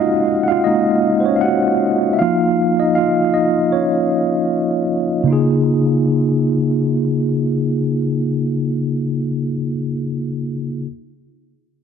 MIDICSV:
0, 0, Header, 1, 2, 480
1, 0, Start_track
1, 0, Key_signature, -5, "major"
1, 0, Tempo, 769231
1, 1372, Time_signature, 4, 2, 24, 8
1, 7386, End_track
2, 0, Start_track
2, 0, Title_t, "Tine electric piano"
2, 0, Program_c, 0, 4
2, 0, Control_c, 0, 64, 127
2, 0, Note_on_c, 0, 56, 50
2, 0, Note_on_c, 0, 58, 44
2, 0, Note_on_c, 0, 61, 44
2, 0, Note_on_c, 0, 63, 64
2, 0, Note_on_c, 0, 65, 62
2, 0, Note_on_c, 0, 66, 72
2, 0, Note_on_c, 0, 75, 83
2, 0, Note_on_c, 0, 77, 80
2, 0, Note_on_c, 0, 78, 93
2, 258, Note_off_c, 0, 63, 0
2, 271, Note_off_c, 0, 78, 0
2, 271, Note_on_c, 0, 78, 60
2, 281, Note_off_c, 0, 75, 0
2, 299, Note_off_c, 0, 77, 0
2, 299, Note_on_c, 0, 77, 87
2, 308, Note_off_c, 0, 78, 0
2, 319, Note_off_c, 0, 65, 0
2, 319, Note_on_c, 0, 65, 68
2, 400, Note_on_c, 0, 75, 83
2, 409, Note_off_c, 0, 65, 0
2, 409, Note_off_c, 0, 77, 0
2, 412, Note_off_c, 0, 56, 0
2, 412, Note_on_c, 0, 56, 45
2, 415, Note_off_c, 0, 58, 0
2, 415, Note_on_c, 0, 58, 44
2, 416, Note_off_c, 0, 61, 0
2, 416, Note_on_c, 0, 61, 42
2, 417, Note_on_c, 0, 63, 70
2, 628, Note_off_c, 0, 56, 0
2, 629, Note_off_c, 0, 58, 0
2, 630, Note_off_c, 0, 61, 0
2, 736, Note_off_c, 0, 63, 0
2, 750, Note_on_c, 0, 72, 56
2, 761, Note_off_c, 0, 75, 0
2, 784, Note_on_c, 0, 73, 70
2, 788, Note_off_c, 0, 72, 0
2, 802, Note_on_c, 0, 61, 58
2, 814, Note_off_c, 0, 73, 0
2, 828, Note_off_c, 0, 61, 0
2, 849, Note_on_c, 0, 77, 64
2, 880, Note_on_c, 0, 78, 90
2, 889, Note_off_c, 0, 77, 0
2, 900, Note_off_c, 0, 66, 0
2, 900, Note_on_c, 0, 66, 71
2, 1304, Note_off_c, 0, 78, 0
2, 1314, Note_off_c, 0, 66, 0
2, 1331, Note_on_c, 0, 76, 65
2, 1365, Note_on_c, 0, 77, 85
2, 1370, Note_off_c, 0, 76, 0
2, 1375, Note_on_c, 0, 53, 49
2, 1379, Note_on_c, 0, 58, 46
2, 1381, Control_c, 0, 64, 0
2, 1382, Note_on_c, 0, 63, 55
2, 1384, Note_on_c, 0, 65, 68
2, 1499, Control_c, 0, 64, 127
2, 1732, Note_off_c, 0, 65, 0
2, 1744, Note_on_c, 0, 75, 74
2, 1753, Note_off_c, 0, 63, 0
2, 1759, Note_off_c, 0, 77, 0
2, 1760, Note_on_c, 0, 63, 58
2, 1842, Note_on_c, 0, 77, 83
2, 1850, Note_off_c, 0, 63, 0
2, 1851, Note_off_c, 0, 75, 0
2, 1860, Note_on_c, 0, 65, 65
2, 2068, Note_off_c, 0, 53, 0
2, 2070, Note_off_c, 0, 58, 0
2, 2079, Note_off_c, 0, 65, 0
2, 2083, Note_on_c, 0, 75, 73
2, 2094, Note_off_c, 0, 77, 0
2, 2098, Note_on_c, 0, 63, 55
2, 2319, Note_off_c, 0, 63, 0
2, 2324, Note_on_c, 0, 73, 71
2, 2335, Note_off_c, 0, 75, 0
2, 2340, Note_on_c, 0, 61, 51
2, 3023, Note_off_c, 0, 73, 0
2, 3031, Note_off_c, 0, 61, 0
2, 3265, Note_on_c, 0, 49, 69
2, 3280, Note_on_c, 0, 58, 63
2, 3293, Note_on_c, 0, 63, 65
2, 3300, Control_c, 0, 64, 0
2, 3308, Note_on_c, 0, 65, 62
2, 3323, Note_on_c, 0, 68, 74
2, 3406, Control_c, 0, 64, 127
2, 5897, Note_off_c, 0, 49, 0
2, 5912, Note_off_c, 0, 58, 0
2, 5925, Note_off_c, 0, 63, 0
2, 5940, Note_off_c, 0, 65, 0
2, 5955, Note_off_c, 0, 68, 0
2, 6779, Control_c, 0, 64, 0
2, 7386, End_track
0, 0, End_of_file